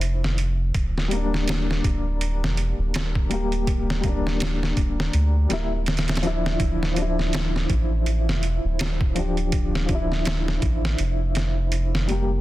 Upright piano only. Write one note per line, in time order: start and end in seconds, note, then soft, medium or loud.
0.00 0.33 F3 medium
0.00 0.35 D4 medium
0.00 0.37 E4 medium
1.08 3.26 G3 medium
1.08 3.28 A#3 medium
1.17 3.30 D4 medium
3.30 3.99 G3 medium
3.30 4.01 A#3 medium
3.30 4.02 G4 medium
4.01 5.46 G3 medium
4.05 5.48 A#3 medium
4.09 5.50 D4 medium
5.49 5.74 G3 medium
5.49 5.75 A#3 medium
5.53 5.76 E4 medium
6.22 6.92 F3 medium
6.22 6.94 D4 medium
6.27 6.95 E4 medium
6.93 9.11 F3 medium
6.98 9.13 D4 medium
7.02 9.15 E4 medium
9.15 9.85 F3 medium
9.15 9.86 D4 medium
9.19 9.87 G4 medium
9.86 12.04 F3 medium
9.90 12.06 D4 medium
9.95 12.08 E4 medium
12.08 12.41 G3 medium
12.08 12.41 A#3 medium
12.12 12.41 G4 medium